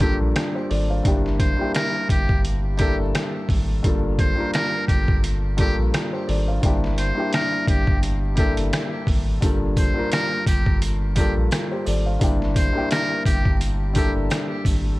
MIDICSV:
0, 0, Header, 1, 5, 480
1, 0, Start_track
1, 0, Tempo, 697674
1, 722, Time_signature, 4, 2, 24, 8
1, 10318, End_track
2, 0, Start_track
2, 0, Title_t, "Muted trumpet"
2, 0, Program_c, 0, 59
2, 5, Note_on_c, 0, 67, 84
2, 125, Note_off_c, 0, 67, 0
2, 960, Note_on_c, 0, 72, 69
2, 1177, Note_off_c, 0, 72, 0
2, 1202, Note_on_c, 0, 70, 90
2, 1418, Note_off_c, 0, 70, 0
2, 1450, Note_on_c, 0, 67, 82
2, 1662, Note_off_c, 0, 67, 0
2, 1919, Note_on_c, 0, 67, 85
2, 2041, Note_off_c, 0, 67, 0
2, 2887, Note_on_c, 0, 72, 75
2, 3101, Note_off_c, 0, 72, 0
2, 3122, Note_on_c, 0, 70, 95
2, 3338, Note_off_c, 0, 70, 0
2, 3358, Note_on_c, 0, 67, 77
2, 3576, Note_off_c, 0, 67, 0
2, 3855, Note_on_c, 0, 67, 85
2, 3970, Note_off_c, 0, 67, 0
2, 4804, Note_on_c, 0, 72, 71
2, 5019, Note_off_c, 0, 72, 0
2, 5052, Note_on_c, 0, 70, 98
2, 5263, Note_off_c, 0, 70, 0
2, 5293, Note_on_c, 0, 67, 82
2, 5504, Note_off_c, 0, 67, 0
2, 5761, Note_on_c, 0, 67, 81
2, 5882, Note_off_c, 0, 67, 0
2, 6729, Note_on_c, 0, 72, 70
2, 6942, Note_off_c, 0, 72, 0
2, 6967, Note_on_c, 0, 70, 99
2, 7181, Note_off_c, 0, 70, 0
2, 7205, Note_on_c, 0, 67, 79
2, 7419, Note_off_c, 0, 67, 0
2, 7682, Note_on_c, 0, 67, 80
2, 7803, Note_off_c, 0, 67, 0
2, 8644, Note_on_c, 0, 72, 73
2, 8859, Note_off_c, 0, 72, 0
2, 8885, Note_on_c, 0, 70, 98
2, 9100, Note_off_c, 0, 70, 0
2, 9119, Note_on_c, 0, 67, 82
2, 9336, Note_off_c, 0, 67, 0
2, 9604, Note_on_c, 0, 67, 80
2, 9724, Note_off_c, 0, 67, 0
2, 10318, End_track
3, 0, Start_track
3, 0, Title_t, "Grand piano"
3, 0, Program_c, 1, 0
3, 0, Control_c, 1, 64, 127
3, 0, Note_on_c, 1, 43, 89
3, 0, Note_on_c, 1, 58, 78
3, 0, Note_on_c, 1, 62, 79
3, 0, Note_on_c, 1, 65, 80
3, 0, Note_on_c, 1, 69, 92
3, 0, Note_on_c, 1, 70, 91
3, 1, Note_off_c, 1, 58, 0
3, 1, Note_on_c, 1, 58, 82
3, 8, Note_off_c, 1, 62, 0
3, 8, Note_on_c, 1, 62, 86
3, 15, Note_off_c, 1, 65, 0
3, 15, Note_on_c, 1, 65, 83
3, 22, Note_off_c, 1, 69, 0
3, 22, Note_on_c, 1, 69, 95
3, 243, Note_off_c, 1, 65, 0
3, 249, Note_off_c, 1, 70, 0
3, 249, Note_on_c, 1, 70, 65
3, 252, Note_off_c, 1, 69, 0
3, 253, Note_on_c, 1, 65, 56
3, 373, Note_off_c, 1, 70, 0
3, 376, Note_off_c, 1, 65, 0
3, 378, Note_on_c, 1, 72, 73
3, 383, Note_on_c, 1, 67, 63
3, 477, Note_on_c, 1, 74, 77
3, 478, Note_off_c, 1, 72, 0
3, 480, Note_off_c, 1, 67, 0
3, 480, Note_on_c, 1, 69, 63
3, 540, Note_off_c, 1, 43, 0
3, 543, Note_off_c, 1, 58, 0
3, 547, Note_off_c, 1, 62, 0
3, 607, Note_off_c, 1, 74, 0
3, 609, Note_off_c, 1, 69, 0
3, 619, Note_on_c, 1, 77, 68
3, 623, Note_on_c, 1, 72, 54
3, 710, Note_on_c, 1, 43, 86
3, 716, Note_on_c, 1, 58, 76
3, 724, Note_on_c, 1, 62, 83
3, 731, Note_on_c, 1, 64, 76
3, 732, Control_c, 1, 64, 0
3, 738, Note_on_c, 1, 67, 90
3, 838, Control_c, 1, 64, 127
3, 846, Note_off_c, 1, 77, 0
3, 848, Note_off_c, 1, 72, 0
3, 987, Note_off_c, 1, 43, 0
3, 990, Note_off_c, 1, 58, 0
3, 994, Note_off_c, 1, 62, 0
3, 997, Note_off_c, 1, 64, 0
3, 1001, Note_off_c, 1, 67, 0
3, 1079, Note_on_c, 1, 43, 83
3, 1086, Note_on_c, 1, 58, 83
3, 1094, Note_on_c, 1, 62, 76
3, 1100, Note_on_c, 1, 64, 84
3, 1108, Note_on_c, 1, 67, 90
3, 1700, Note_off_c, 1, 43, 0
3, 1704, Note_off_c, 1, 58, 0
3, 1708, Note_off_c, 1, 62, 0
3, 1711, Note_off_c, 1, 64, 0
3, 1715, Note_off_c, 1, 67, 0
3, 1907, Note_on_c, 1, 43, 84
3, 1914, Note_on_c, 1, 58, 84
3, 1922, Note_on_c, 1, 62, 82
3, 1929, Note_on_c, 1, 64, 82
3, 1936, Note_on_c, 1, 69, 106
3, 2456, Note_off_c, 1, 43, 0
3, 2460, Note_off_c, 1, 58, 0
3, 2464, Note_off_c, 1, 62, 0
3, 2467, Note_off_c, 1, 64, 0
3, 2471, Note_off_c, 1, 69, 0
3, 2633, Note_on_c, 1, 43, 89
3, 2640, Note_on_c, 1, 58, 79
3, 2648, Note_on_c, 1, 62, 72
3, 2652, Control_c, 1, 64, 0
3, 2655, Note_on_c, 1, 65, 78
3, 2662, Note_on_c, 1, 69, 90
3, 2791, Control_c, 1, 64, 127
3, 2909, Note_off_c, 1, 43, 0
3, 2912, Note_off_c, 1, 58, 0
3, 2916, Note_off_c, 1, 62, 0
3, 2919, Note_off_c, 1, 65, 0
3, 2923, Note_off_c, 1, 69, 0
3, 2999, Note_on_c, 1, 43, 88
3, 3007, Note_on_c, 1, 58, 77
3, 3014, Note_on_c, 1, 62, 80
3, 3021, Note_on_c, 1, 65, 82
3, 3028, Note_on_c, 1, 70, 93
3, 3620, Note_off_c, 1, 43, 0
3, 3624, Note_off_c, 1, 58, 0
3, 3628, Note_off_c, 1, 62, 0
3, 3631, Note_off_c, 1, 65, 0
3, 3635, Note_off_c, 1, 70, 0
3, 3834, Note_on_c, 1, 43, 96
3, 3841, Note_on_c, 1, 58, 82
3, 3849, Note_on_c, 1, 62, 82
3, 3856, Note_on_c, 1, 65, 83
3, 3863, Note_on_c, 1, 69, 95
3, 4082, Note_off_c, 1, 65, 0
3, 4088, Note_on_c, 1, 70, 64
3, 4092, Note_off_c, 1, 69, 0
3, 4092, Note_on_c, 1, 65, 57
3, 4213, Note_off_c, 1, 70, 0
3, 4215, Note_off_c, 1, 65, 0
3, 4219, Note_on_c, 1, 72, 74
3, 4223, Note_on_c, 1, 67, 64
3, 4316, Note_on_c, 1, 74, 77
3, 4318, Note_off_c, 1, 72, 0
3, 4320, Note_off_c, 1, 67, 0
3, 4320, Note_on_c, 1, 69, 62
3, 4380, Note_off_c, 1, 43, 0
3, 4383, Note_off_c, 1, 58, 0
3, 4387, Note_off_c, 1, 62, 0
3, 4447, Note_off_c, 1, 74, 0
3, 4449, Note_off_c, 1, 69, 0
3, 4458, Note_on_c, 1, 77, 66
3, 4462, Note_on_c, 1, 72, 55
3, 4549, Note_on_c, 1, 43, 83
3, 4556, Note_on_c, 1, 58, 74
3, 4563, Note_on_c, 1, 62, 78
3, 4570, Note_on_c, 1, 64, 77
3, 4571, Control_c, 1, 64, 0
3, 4578, Note_on_c, 1, 67, 94
3, 4685, Note_off_c, 1, 77, 0
3, 4688, Note_off_c, 1, 72, 0
3, 4697, Control_c, 1, 64, 127
3, 4826, Note_off_c, 1, 43, 0
3, 4830, Note_off_c, 1, 58, 0
3, 4834, Note_off_c, 1, 62, 0
3, 4837, Note_off_c, 1, 64, 0
3, 4841, Note_off_c, 1, 67, 0
3, 4920, Note_on_c, 1, 43, 87
3, 4927, Note_on_c, 1, 58, 85
3, 4934, Note_on_c, 1, 62, 78
3, 4941, Note_on_c, 1, 64, 85
3, 4949, Note_on_c, 1, 67, 95
3, 5541, Note_off_c, 1, 43, 0
3, 5545, Note_off_c, 1, 58, 0
3, 5548, Note_off_c, 1, 62, 0
3, 5551, Note_off_c, 1, 64, 0
3, 5555, Note_off_c, 1, 67, 0
3, 5746, Note_on_c, 1, 43, 83
3, 5753, Note_on_c, 1, 58, 82
3, 5761, Note_on_c, 1, 62, 79
3, 5768, Note_on_c, 1, 64, 79
3, 5775, Note_on_c, 1, 69, 101
3, 6296, Note_off_c, 1, 43, 0
3, 6300, Note_off_c, 1, 58, 0
3, 6303, Note_off_c, 1, 62, 0
3, 6307, Note_off_c, 1, 64, 0
3, 6310, Note_off_c, 1, 69, 0
3, 6474, Note_on_c, 1, 43, 91
3, 6481, Note_on_c, 1, 58, 81
3, 6488, Note_on_c, 1, 62, 74
3, 6489, Control_c, 1, 64, 0
3, 6495, Note_on_c, 1, 65, 75
3, 6502, Note_on_c, 1, 69, 89
3, 6610, Control_c, 1, 64, 127
3, 6749, Note_off_c, 1, 43, 0
3, 6752, Note_off_c, 1, 58, 0
3, 6756, Note_off_c, 1, 62, 0
3, 6759, Note_off_c, 1, 65, 0
3, 6763, Note_off_c, 1, 69, 0
3, 6839, Note_on_c, 1, 43, 87
3, 6846, Note_on_c, 1, 58, 75
3, 6854, Note_on_c, 1, 62, 78
3, 6861, Note_on_c, 1, 65, 80
3, 6868, Note_on_c, 1, 70, 94
3, 7460, Note_off_c, 1, 43, 0
3, 7464, Note_off_c, 1, 58, 0
3, 7468, Note_off_c, 1, 62, 0
3, 7471, Note_off_c, 1, 65, 0
3, 7475, Note_off_c, 1, 70, 0
3, 7674, Note_on_c, 1, 43, 90
3, 7681, Note_on_c, 1, 58, 81
3, 7689, Note_on_c, 1, 62, 82
3, 7696, Note_on_c, 1, 65, 82
3, 7704, Note_on_c, 1, 69, 96
3, 7921, Note_off_c, 1, 65, 0
3, 7928, Note_on_c, 1, 70, 67
3, 7932, Note_on_c, 1, 65, 54
3, 7933, Note_off_c, 1, 69, 0
3, 8053, Note_off_c, 1, 70, 0
3, 8055, Note_off_c, 1, 65, 0
3, 8059, Note_on_c, 1, 72, 74
3, 8063, Note_on_c, 1, 67, 62
3, 8157, Note_on_c, 1, 74, 75
3, 8158, Note_off_c, 1, 72, 0
3, 8160, Note_off_c, 1, 67, 0
3, 8161, Note_on_c, 1, 69, 64
3, 8220, Note_off_c, 1, 43, 0
3, 8223, Note_off_c, 1, 58, 0
3, 8227, Note_off_c, 1, 62, 0
3, 8287, Note_off_c, 1, 74, 0
3, 8289, Note_off_c, 1, 69, 0
3, 8298, Note_on_c, 1, 77, 67
3, 8302, Note_on_c, 1, 72, 54
3, 8389, Note_on_c, 1, 43, 86
3, 8396, Note_on_c, 1, 58, 72
3, 8404, Note_on_c, 1, 62, 83
3, 8410, Control_c, 1, 64, 0
3, 8410, Note_on_c, 1, 64, 80
3, 8418, Note_on_c, 1, 67, 92
3, 8525, Note_off_c, 1, 77, 0
3, 8527, Note_off_c, 1, 72, 0
3, 8544, Control_c, 1, 64, 127
3, 8666, Note_off_c, 1, 43, 0
3, 8670, Note_off_c, 1, 58, 0
3, 8674, Note_off_c, 1, 62, 0
3, 8677, Note_off_c, 1, 64, 0
3, 8681, Note_off_c, 1, 67, 0
3, 8759, Note_on_c, 1, 43, 87
3, 8766, Note_on_c, 1, 58, 82
3, 8774, Note_on_c, 1, 62, 78
3, 8781, Note_on_c, 1, 64, 82
3, 8788, Note_on_c, 1, 67, 95
3, 9380, Note_off_c, 1, 43, 0
3, 9384, Note_off_c, 1, 58, 0
3, 9388, Note_off_c, 1, 62, 0
3, 9391, Note_off_c, 1, 64, 0
3, 9395, Note_off_c, 1, 67, 0
3, 9586, Note_on_c, 1, 43, 84
3, 9593, Note_on_c, 1, 58, 84
3, 9601, Note_on_c, 1, 62, 83
3, 9608, Note_on_c, 1, 64, 80
3, 9615, Note_on_c, 1, 69, 107
3, 10136, Note_off_c, 1, 43, 0
3, 10139, Note_off_c, 1, 58, 0
3, 10143, Note_off_c, 1, 62, 0
3, 10147, Note_off_c, 1, 64, 0
3, 10150, Note_off_c, 1, 69, 0
3, 10318, End_track
4, 0, Start_track
4, 0, Title_t, "Sub bass"
4, 0, Program_c, 2, 38
4, 0, Note_on_c, 2, 31, 95
4, 109, Note_off_c, 2, 31, 0
4, 140, Note_on_c, 2, 34, 96
4, 232, Note_off_c, 2, 34, 0
4, 485, Note_on_c, 2, 32, 111
4, 698, Note_off_c, 2, 32, 0
4, 724, Note_on_c, 2, 31, 118
4, 1058, Note_off_c, 2, 31, 0
4, 1442, Note_on_c, 2, 31, 97
4, 2029, Note_off_c, 2, 31, 0
4, 2060, Note_on_c, 2, 31, 96
4, 2152, Note_off_c, 2, 31, 0
4, 2401, Note_on_c, 2, 32, 99
4, 2616, Note_off_c, 2, 32, 0
4, 2645, Note_on_c, 2, 31, 108
4, 2978, Note_off_c, 2, 31, 0
4, 3362, Note_on_c, 2, 31, 96
4, 3949, Note_off_c, 2, 31, 0
4, 3979, Note_on_c, 2, 34, 96
4, 4072, Note_off_c, 2, 34, 0
4, 4325, Note_on_c, 2, 32, 109
4, 4538, Note_off_c, 2, 32, 0
4, 4564, Note_on_c, 2, 31, 115
4, 4897, Note_off_c, 2, 31, 0
4, 5282, Note_on_c, 2, 31, 93
4, 5869, Note_off_c, 2, 31, 0
4, 5901, Note_on_c, 2, 31, 94
4, 5993, Note_off_c, 2, 31, 0
4, 6241, Note_on_c, 2, 32, 97
4, 6456, Note_off_c, 2, 32, 0
4, 6485, Note_on_c, 2, 31, 105
4, 6818, Note_off_c, 2, 31, 0
4, 7202, Note_on_c, 2, 31, 92
4, 7789, Note_off_c, 2, 31, 0
4, 7820, Note_on_c, 2, 34, 95
4, 7913, Note_off_c, 2, 34, 0
4, 8165, Note_on_c, 2, 32, 106
4, 8378, Note_off_c, 2, 32, 0
4, 8404, Note_on_c, 2, 31, 118
4, 8737, Note_off_c, 2, 31, 0
4, 9121, Note_on_c, 2, 31, 97
4, 9709, Note_off_c, 2, 31, 0
4, 9740, Note_on_c, 2, 31, 94
4, 9832, Note_off_c, 2, 31, 0
4, 10081, Note_on_c, 2, 32, 101
4, 10295, Note_off_c, 2, 32, 0
4, 10318, End_track
5, 0, Start_track
5, 0, Title_t, "Drums"
5, 0, Note_on_c, 9, 42, 78
5, 4, Note_on_c, 9, 36, 97
5, 66, Note_off_c, 9, 42, 0
5, 73, Note_off_c, 9, 36, 0
5, 246, Note_on_c, 9, 42, 105
5, 249, Note_on_c, 9, 38, 120
5, 251, Note_on_c, 9, 37, 93
5, 315, Note_off_c, 9, 42, 0
5, 317, Note_off_c, 9, 38, 0
5, 319, Note_off_c, 9, 37, 0
5, 487, Note_on_c, 9, 46, 53
5, 555, Note_off_c, 9, 46, 0
5, 723, Note_on_c, 9, 36, 111
5, 723, Note_on_c, 9, 42, 89
5, 791, Note_off_c, 9, 36, 0
5, 792, Note_off_c, 9, 42, 0
5, 866, Note_on_c, 9, 38, 34
5, 935, Note_off_c, 9, 38, 0
5, 961, Note_on_c, 9, 36, 104
5, 962, Note_on_c, 9, 42, 77
5, 1030, Note_off_c, 9, 36, 0
5, 1031, Note_off_c, 9, 42, 0
5, 1201, Note_on_c, 9, 42, 93
5, 1210, Note_on_c, 9, 38, 107
5, 1212, Note_on_c, 9, 37, 88
5, 1269, Note_off_c, 9, 42, 0
5, 1279, Note_off_c, 9, 38, 0
5, 1281, Note_off_c, 9, 37, 0
5, 1440, Note_on_c, 9, 36, 105
5, 1445, Note_on_c, 9, 42, 81
5, 1509, Note_off_c, 9, 36, 0
5, 1514, Note_off_c, 9, 42, 0
5, 1576, Note_on_c, 9, 36, 99
5, 1645, Note_off_c, 9, 36, 0
5, 1683, Note_on_c, 9, 42, 97
5, 1752, Note_off_c, 9, 42, 0
5, 1918, Note_on_c, 9, 42, 79
5, 1924, Note_on_c, 9, 36, 101
5, 1986, Note_off_c, 9, 42, 0
5, 1993, Note_off_c, 9, 36, 0
5, 2166, Note_on_c, 9, 42, 102
5, 2169, Note_on_c, 9, 38, 119
5, 2171, Note_on_c, 9, 37, 94
5, 2235, Note_off_c, 9, 42, 0
5, 2238, Note_off_c, 9, 38, 0
5, 2240, Note_off_c, 9, 37, 0
5, 2399, Note_on_c, 9, 36, 87
5, 2407, Note_on_c, 9, 46, 54
5, 2468, Note_off_c, 9, 36, 0
5, 2475, Note_off_c, 9, 46, 0
5, 2643, Note_on_c, 9, 36, 110
5, 2643, Note_on_c, 9, 42, 87
5, 2712, Note_off_c, 9, 36, 0
5, 2712, Note_off_c, 9, 42, 0
5, 2881, Note_on_c, 9, 36, 109
5, 2882, Note_on_c, 9, 42, 78
5, 2950, Note_off_c, 9, 36, 0
5, 2951, Note_off_c, 9, 42, 0
5, 3121, Note_on_c, 9, 42, 92
5, 3131, Note_on_c, 9, 38, 108
5, 3133, Note_on_c, 9, 37, 88
5, 3190, Note_off_c, 9, 42, 0
5, 3199, Note_off_c, 9, 38, 0
5, 3201, Note_off_c, 9, 37, 0
5, 3360, Note_on_c, 9, 36, 105
5, 3365, Note_on_c, 9, 42, 80
5, 3429, Note_off_c, 9, 36, 0
5, 3434, Note_off_c, 9, 42, 0
5, 3496, Note_on_c, 9, 36, 97
5, 3565, Note_off_c, 9, 36, 0
5, 3604, Note_on_c, 9, 42, 94
5, 3672, Note_off_c, 9, 42, 0
5, 3838, Note_on_c, 9, 42, 81
5, 3844, Note_on_c, 9, 36, 97
5, 3906, Note_off_c, 9, 42, 0
5, 3913, Note_off_c, 9, 36, 0
5, 4086, Note_on_c, 9, 42, 103
5, 4089, Note_on_c, 9, 38, 119
5, 4091, Note_on_c, 9, 37, 93
5, 4155, Note_off_c, 9, 42, 0
5, 4158, Note_off_c, 9, 38, 0
5, 4160, Note_off_c, 9, 37, 0
5, 4326, Note_on_c, 9, 46, 55
5, 4395, Note_off_c, 9, 46, 0
5, 4562, Note_on_c, 9, 36, 105
5, 4562, Note_on_c, 9, 42, 90
5, 4631, Note_off_c, 9, 36, 0
5, 4631, Note_off_c, 9, 42, 0
5, 4706, Note_on_c, 9, 38, 35
5, 4775, Note_off_c, 9, 38, 0
5, 4801, Note_on_c, 9, 42, 76
5, 4870, Note_off_c, 9, 42, 0
5, 5040, Note_on_c, 9, 42, 91
5, 5050, Note_on_c, 9, 38, 112
5, 5052, Note_on_c, 9, 37, 85
5, 5109, Note_off_c, 9, 42, 0
5, 5119, Note_off_c, 9, 38, 0
5, 5121, Note_off_c, 9, 37, 0
5, 5280, Note_on_c, 9, 36, 104
5, 5285, Note_on_c, 9, 42, 77
5, 5349, Note_off_c, 9, 36, 0
5, 5354, Note_off_c, 9, 42, 0
5, 5417, Note_on_c, 9, 36, 93
5, 5486, Note_off_c, 9, 36, 0
5, 5524, Note_on_c, 9, 42, 92
5, 5593, Note_off_c, 9, 42, 0
5, 5758, Note_on_c, 9, 42, 81
5, 5764, Note_on_c, 9, 36, 95
5, 5826, Note_off_c, 9, 42, 0
5, 5833, Note_off_c, 9, 36, 0
5, 5898, Note_on_c, 9, 42, 61
5, 5967, Note_off_c, 9, 42, 0
5, 6006, Note_on_c, 9, 42, 100
5, 6009, Note_on_c, 9, 38, 122
5, 6010, Note_on_c, 9, 37, 95
5, 6074, Note_off_c, 9, 42, 0
5, 6077, Note_off_c, 9, 38, 0
5, 6079, Note_off_c, 9, 37, 0
5, 6240, Note_on_c, 9, 36, 90
5, 6247, Note_on_c, 9, 46, 54
5, 6308, Note_off_c, 9, 36, 0
5, 6316, Note_off_c, 9, 46, 0
5, 6483, Note_on_c, 9, 36, 108
5, 6483, Note_on_c, 9, 42, 88
5, 6485, Note_on_c, 9, 83, 53
5, 6551, Note_off_c, 9, 42, 0
5, 6552, Note_off_c, 9, 36, 0
5, 6554, Note_off_c, 9, 83, 0
5, 6721, Note_on_c, 9, 36, 105
5, 6721, Note_on_c, 9, 42, 76
5, 6721, Note_on_c, 9, 83, 74
5, 6790, Note_off_c, 9, 36, 0
5, 6790, Note_off_c, 9, 42, 0
5, 6790, Note_off_c, 9, 83, 0
5, 6960, Note_on_c, 9, 42, 94
5, 6961, Note_on_c, 9, 83, 50
5, 6970, Note_on_c, 9, 38, 112
5, 6972, Note_on_c, 9, 37, 85
5, 7029, Note_off_c, 9, 42, 0
5, 7029, Note_off_c, 9, 83, 0
5, 7039, Note_off_c, 9, 38, 0
5, 7041, Note_off_c, 9, 37, 0
5, 7200, Note_on_c, 9, 36, 102
5, 7203, Note_on_c, 9, 83, 70
5, 7205, Note_on_c, 9, 42, 77
5, 7269, Note_off_c, 9, 36, 0
5, 7272, Note_off_c, 9, 83, 0
5, 7274, Note_off_c, 9, 42, 0
5, 7336, Note_on_c, 9, 36, 93
5, 7405, Note_off_c, 9, 36, 0
5, 7443, Note_on_c, 9, 42, 93
5, 7445, Note_on_c, 9, 83, 54
5, 7512, Note_off_c, 9, 42, 0
5, 7513, Note_off_c, 9, 83, 0
5, 7677, Note_on_c, 9, 42, 79
5, 7683, Note_on_c, 9, 83, 68
5, 7684, Note_on_c, 9, 36, 95
5, 7746, Note_off_c, 9, 42, 0
5, 7752, Note_off_c, 9, 36, 0
5, 7752, Note_off_c, 9, 83, 0
5, 7919, Note_on_c, 9, 83, 52
5, 7926, Note_on_c, 9, 42, 105
5, 7929, Note_on_c, 9, 38, 120
5, 7931, Note_on_c, 9, 37, 97
5, 7988, Note_off_c, 9, 83, 0
5, 7995, Note_off_c, 9, 42, 0
5, 7998, Note_off_c, 9, 38, 0
5, 7999, Note_off_c, 9, 37, 0
5, 8163, Note_on_c, 9, 83, 69
5, 8166, Note_on_c, 9, 46, 54
5, 8232, Note_off_c, 9, 83, 0
5, 8235, Note_off_c, 9, 46, 0
5, 8402, Note_on_c, 9, 36, 108
5, 8402, Note_on_c, 9, 42, 91
5, 8405, Note_on_c, 9, 83, 54
5, 8470, Note_off_c, 9, 42, 0
5, 8471, Note_off_c, 9, 36, 0
5, 8473, Note_off_c, 9, 83, 0
5, 8545, Note_on_c, 9, 38, 34
5, 8614, Note_off_c, 9, 38, 0
5, 8640, Note_on_c, 9, 36, 110
5, 8641, Note_on_c, 9, 42, 75
5, 8641, Note_on_c, 9, 83, 73
5, 8709, Note_off_c, 9, 36, 0
5, 8710, Note_off_c, 9, 42, 0
5, 8710, Note_off_c, 9, 83, 0
5, 8880, Note_on_c, 9, 42, 94
5, 8881, Note_on_c, 9, 83, 51
5, 8890, Note_on_c, 9, 38, 110
5, 8892, Note_on_c, 9, 37, 86
5, 8949, Note_off_c, 9, 42, 0
5, 8950, Note_off_c, 9, 83, 0
5, 8958, Note_off_c, 9, 38, 0
5, 8960, Note_off_c, 9, 37, 0
5, 9120, Note_on_c, 9, 36, 107
5, 9124, Note_on_c, 9, 83, 68
5, 9125, Note_on_c, 9, 42, 78
5, 9188, Note_off_c, 9, 36, 0
5, 9193, Note_off_c, 9, 42, 0
5, 9193, Note_off_c, 9, 83, 0
5, 9256, Note_on_c, 9, 36, 98
5, 9325, Note_off_c, 9, 36, 0
5, 9363, Note_on_c, 9, 42, 97
5, 9365, Note_on_c, 9, 83, 52
5, 9432, Note_off_c, 9, 42, 0
5, 9434, Note_off_c, 9, 83, 0
5, 9597, Note_on_c, 9, 42, 80
5, 9603, Note_on_c, 9, 83, 68
5, 9604, Note_on_c, 9, 36, 101
5, 9666, Note_off_c, 9, 42, 0
5, 9672, Note_off_c, 9, 36, 0
5, 9672, Note_off_c, 9, 83, 0
5, 9839, Note_on_c, 9, 83, 52
5, 9846, Note_on_c, 9, 42, 101
5, 9849, Note_on_c, 9, 38, 124
5, 9850, Note_on_c, 9, 37, 94
5, 9908, Note_off_c, 9, 83, 0
5, 9914, Note_off_c, 9, 42, 0
5, 9917, Note_off_c, 9, 38, 0
5, 9919, Note_off_c, 9, 37, 0
5, 10079, Note_on_c, 9, 36, 88
5, 10083, Note_on_c, 9, 83, 67
5, 10086, Note_on_c, 9, 46, 54
5, 10148, Note_off_c, 9, 36, 0
5, 10152, Note_off_c, 9, 83, 0
5, 10155, Note_off_c, 9, 46, 0
5, 10318, End_track
0, 0, End_of_file